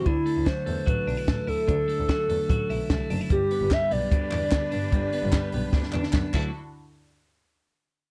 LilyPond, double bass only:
\new Staff \with { instrumentName = "Double bass" } { \clef bass \time 4/4 \key d \major \tempo 4 = 148 d,8 r16 d,8. e,8 a,,8 b,,8 a,,8 d,8 | d,8 r16 d,8. e,8 a,,8 b,,8 c,8 fis,,8 | g,,8 r16 g,,8. b,,8 d,8 e,8 d,8 g,8 | g,,8 r16 g,,8. b,,8 d,8 e,8 fis,8 d,8 |
r1 | }